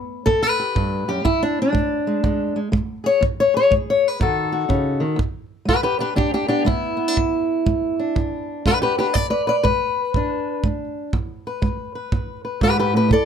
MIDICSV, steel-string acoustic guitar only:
0, 0, Header, 1, 2, 480
1, 0, Start_track
1, 0, Tempo, 493421
1, 1221, Time_signature, 4, 2, 24, 8
1, 12890, End_track
2, 0, Start_track
2, 0, Title_t, "Steel-string acoustic guitar"
2, 0, Program_c, 0, 25
2, 0, Note_on_c, 0, 57, 67
2, 229, Note_off_c, 0, 57, 0
2, 250, Note_on_c, 0, 69, 118
2, 267, Note_on_c, 0, 40, 70
2, 414, Note_on_c, 0, 71, 102
2, 417, Note_off_c, 0, 69, 0
2, 580, Note_on_c, 0, 67, 51
2, 710, Note_off_c, 0, 40, 0
2, 732, Note_on_c, 0, 43, 65
2, 1045, Note_off_c, 0, 67, 0
2, 1047, Note_off_c, 0, 43, 0
2, 1051, Note_on_c, 0, 42, 64
2, 1056, Note_off_c, 0, 71, 0
2, 1057, Note_on_c, 0, 67, 99
2, 1207, Note_off_c, 0, 42, 0
2, 1211, Note_on_c, 0, 40, 80
2, 1213, Note_on_c, 0, 64, 101
2, 1218, Note_off_c, 0, 67, 0
2, 1375, Note_off_c, 0, 64, 0
2, 1387, Note_on_c, 0, 62, 97
2, 1543, Note_off_c, 0, 62, 0
2, 1574, Note_on_c, 0, 62, 98
2, 1661, Note_off_c, 0, 40, 0
2, 1678, Note_on_c, 0, 56, 68
2, 2001, Note_off_c, 0, 56, 0
2, 2015, Note_on_c, 0, 56, 50
2, 2165, Note_off_c, 0, 56, 0
2, 2172, Note_on_c, 0, 40, 66
2, 2177, Note_on_c, 0, 56, 54
2, 2478, Note_off_c, 0, 56, 0
2, 2489, Note_on_c, 0, 56, 47
2, 2513, Note_off_c, 0, 62, 0
2, 2620, Note_off_c, 0, 40, 0
2, 2634, Note_off_c, 0, 56, 0
2, 2645, Note_on_c, 0, 56, 73
2, 2955, Note_on_c, 0, 68, 48
2, 2978, Note_on_c, 0, 73, 117
2, 3096, Note_off_c, 0, 56, 0
2, 3108, Note_off_c, 0, 68, 0
2, 3121, Note_on_c, 0, 40, 82
2, 3136, Note_off_c, 0, 73, 0
2, 3308, Note_on_c, 0, 73, 99
2, 3444, Note_on_c, 0, 68, 54
2, 3458, Note_off_c, 0, 73, 0
2, 3469, Note_on_c, 0, 73, 108
2, 3574, Note_off_c, 0, 40, 0
2, 3605, Note_on_c, 0, 56, 70
2, 3621, Note_off_c, 0, 73, 0
2, 3794, Note_on_c, 0, 73, 98
2, 3967, Note_off_c, 0, 73, 0
2, 3967, Note_on_c, 0, 71, 107
2, 4056, Note_off_c, 0, 56, 0
2, 4071, Note_off_c, 0, 68, 0
2, 4082, Note_on_c, 0, 47, 75
2, 4091, Note_on_c, 0, 51, 64
2, 4101, Note_on_c, 0, 63, 64
2, 4103, Note_on_c, 0, 66, 65
2, 4106, Note_off_c, 0, 71, 0
2, 4110, Note_on_c, 0, 69, 78
2, 4390, Note_off_c, 0, 66, 0
2, 4401, Note_on_c, 0, 66, 60
2, 4535, Note_off_c, 0, 47, 0
2, 4556, Note_off_c, 0, 51, 0
2, 4560, Note_on_c, 0, 49, 73
2, 4865, Note_on_c, 0, 51, 67
2, 4880, Note_off_c, 0, 49, 0
2, 5021, Note_on_c, 0, 40, 78
2, 5030, Note_off_c, 0, 66, 0
2, 5037, Note_off_c, 0, 63, 0
2, 5041, Note_off_c, 0, 69, 0
2, 5042, Note_off_c, 0, 51, 0
2, 5484, Note_off_c, 0, 40, 0
2, 5500, Note_on_c, 0, 56, 67
2, 5531, Note_on_c, 0, 67, 88
2, 5536, Note_on_c, 0, 71, 102
2, 5582, Note_off_c, 0, 67, 0
2, 5665, Note_off_c, 0, 71, 0
2, 5673, Note_on_c, 0, 67, 88
2, 5679, Note_on_c, 0, 71, 97
2, 5783, Note_off_c, 0, 67, 0
2, 5825, Note_on_c, 0, 62, 45
2, 5836, Note_off_c, 0, 71, 0
2, 5841, Note_on_c, 0, 67, 82
2, 5848, Note_on_c, 0, 71, 94
2, 5923, Note_off_c, 0, 67, 0
2, 5964, Note_off_c, 0, 56, 0
2, 5988, Note_on_c, 0, 40, 65
2, 5990, Note_off_c, 0, 62, 0
2, 5994, Note_on_c, 0, 62, 89
2, 5998, Note_off_c, 0, 71, 0
2, 6002, Note_on_c, 0, 67, 97
2, 6154, Note_off_c, 0, 62, 0
2, 6157, Note_off_c, 0, 67, 0
2, 6165, Note_on_c, 0, 62, 80
2, 6169, Note_on_c, 0, 67, 92
2, 6296, Note_off_c, 0, 62, 0
2, 6304, Note_off_c, 0, 67, 0
2, 6308, Note_on_c, 0, 62, 81
2, 6316, Note_on_c, 0, 67, 88
2, 6322, Note_on_c, 0, 59, 48
2, 6448, Note_off_c, 0, 40, 0
2, 6466, Note_on_c, 0, 56, 67
2, 6477, Note_off_c, 0, 67, 0
2, 6481, Note_off_c, 0, 62, 0
2, 6481, Note_on_c, 0, 64, 98
2, 6778, Note_off_c, 0, 59, 0
2, 6778, Note_on_c, 0, 59, 48
2, 6886, Note_off_c, 0, 59, 0
2, 6886, Note_on_c, 0, 62, 41
2, 6927, Note_off_c, 0, 56, 0
2, 6972, Note_off_c, 0, 62, 0
2, 6974, Note_on_c, 0, 40, 83
2, 7422, Note_off_c, 0, 40, 0
2, 7451, Note_on_c, 0, 56, 67
2, 7777, Note_on_c, 0, 62, 49
2, 7901, Note_off_c, 0, 56, 0
2, 7930, Note_off_c, 0, 64, 0
2, 7933, Note_on_c, 0, 40, 67
2, 8383, Note_off_c, 0, 40, 0
2, 8420, Note_on_c, 0, 56, 68
2, 8429, Note_on_c, 0, 67, 82
2, 8436, Note_on_c, 0, 71, 102
2, 8474, Note_off_c, 0, 67, 0
2, 8574, Note_off_c, 0, 71, 0
2, 8578, Note_on_c, 0, 67, 83
2, 8588, Note_on_c, 0, 71, 102
2, 8677, Note_off_c, 0, 67, 0
2, 8734, Note_off_c, 0, 62, 0
2, 8737, Note_off_c, 0, 71, 0
2, 8738, Note_on_c, 0, 62, 50
2, 8741, Note_on_c, 0, 67, 88
2, 8753, Note_on_c, 0, 71, 94
2, 8815, Note_off_c, 0, 67, 0
2, 8867, Note_off_c, 0, 56, 0
2, 8883, Note_off_c, 0, 71, 0
2, 8883, Note_on_c, 0, 71, 78
2, 8889, Note_on_c, 0, 74, 87
2, 8903, Note_on_c, 0, 40, 78
2, 8932, Note_off_c, 0, 62, 0
2, 8941, Note_off_c, 0, 71, 0
2, 9041, Note_off_c, 0, 74, 0
2, 9048, Note_on_c, 0, 71, 79
2, 9053, Note_on_c, 0, 74, 95
2, 9153, Note_off_c, 0, 71, 0
2, 9214, Note_on_c, 0, 71, 82
2, 9216, Note_off_c, 0, 74, 0
2, 9231, Note_on_c, 0, 74, 95
2, 9292, Note_off_c, 0, 71, 0
2, 9349, Note_off_c, 0, 40, 0
2, 9373, Note_on_c, 0, 71, 110
2, 9385, Note_off_c, 0, 74, 0
2, 9389, Note_on_c, 0, 56, 71
2, 9832, Note_off_c, 0, 56, 0
2, 9881, Note_on_c, 0, 40, 70
2, 9887, Note_on_c, 0, 62, 55
2, 10319, Note_off_c, 0, 40, 0
2, 10339, Note_off_c, 0, 71, 0
2, 10355, Note_on_c, 0, 56, 65
2, 10797, Note_off_c, 0, 56, 0
2, 10815, Note_off_c, 0, 62, 0
2, 10833, Note_on_c, 0, 40, 82
2, 11157, Note_on_c, 0, 71, 53
2, 11276, Note_off_c, 0, 40, 0
2, 11302, Note_on_c, 0, 56, 68
2, 11624, Note_off_c, 0, 71, 0
2, 11628, Note_on_c, 0, 71, 51
2, 11751, Note_off_c, 0, 56, 0
2, 11796, Note_on_c, 0, 40, 65
2, 12096, Note_off_c, 0, 71, 0
2, 12108, Note_on_c, 0, 71, 48
2, 12239, Note_off_c, 0, 40, 0
2, 12267, Note_on_c, 0, 44, 66
2, 12271, Note_off_c, 0, 71, 0
2, 12287, Note_on_c, 0, 67, 89
2, 12288, Note_on_c, 0, 71, 102
2, 12435, Note_off_c, 0, 67, 0
2, 12438, Note_off_c, 0, 71, 0
2, 12446, Note_on_c, 0, 67, 80
2, 12451, Note_on_c, 0, 71, 95
2, 12582, Note_off_c, 0, 44, 0
2, 12586, Note_on_c, 0, 45, 63
2, 12597, Note_off_c, 0, 67, 0
2, 12599, Note_off_c, 0, 71, 0
2, 12611, Note_on_c, 0, 67, 73
2, 12615, Note_on_c, 0, 71, 93
2, 12729, Note_on_c, 0, 47, 78
2, 12750, Note_off_c, 0, 45, 0
2, 12760, Note_off_c, 0, 67, 0
2, 12762, Note_off_c, 0, 71, 0
2, 12769, Note_on_c, 0, 69, 92
2, 12778, Note_on_c, 0, 74, 103
2, 12890, Note_off_c, 0, 47, 0
2, 12890, Note_off_c, 0, 69, 0
2, 12890, Note_off_c, 0, 74, 0
2, 12890, End_track
0, 0, End_of_file